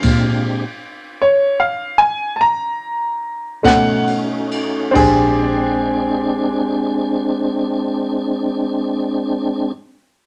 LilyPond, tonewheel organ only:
\new Staff \with { instrumentName = "Tonewheel organ" } { \time 12/8 \key bes \mixolydian \tempo 4. = 45 <aes c' d' g'>4 r2. r8 <a cis' dis' fis'>4. | <aes c' d'>1. | }